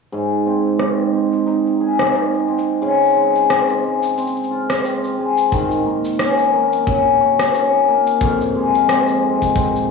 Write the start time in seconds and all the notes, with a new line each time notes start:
0.12 G#2, shaker
0.32 shaker
0.46 C4
0.65 shaker
0.79 D#4, cross-stick, shaker
0.99 shaker
1.13 C4
1.32 shaker
1.46 D#4, shaker
1.66 shaker
1.80 G#4
1.99 cross-stick, shaker
2.01 cross-stick
2.07 cross-stick
2.09 cross-stick
2.12 D#4, cross-stick, shaker
2.34 shaker
2.48 C4
2.58 shaker
2.82 C#3, shaker
3.02 shaker
3.05 shaker
3.09 shaker
3.13 G#3, shaker
3.17 shaker
3.22 shaker
3.26 shaker
3.31 shaker
3.35 shaker
3.50 C4, cross-stick, shaker
3.69 shaker
3.84 G#3
4.03 shaker
4.17 C4, shaker
4.27 shaker
4.36 shaker
4.43 shaker
4.51 F4
4.70 cross-stick, shaker
4.84 C4, shaker
5.04 shaker
5.18 G#3
5.37 shaker
5.52 D#3, kick, shaker
5.71 shaker
5.85 A#3
6.05 shaker
6.19 C#4, cross-stick, shaker
6.39 shaker
6.53 A#3
6.73 shaker
6.87 C#4, kick, shaker
7.21 F#4
7.39 cross-stick, shaker
7.54 C#4, shaker
7.88 A#3
8.07 shaker
8.21 F2, kick, shaker
8.41 shaker
8.55 G#3
8.75 shaker
8.88 C4, cross-stick, shaker
9.08 shaker
9.22 G#3
9.42 kick, shaker
9.56 C4, kick, shaker
9.76 shaker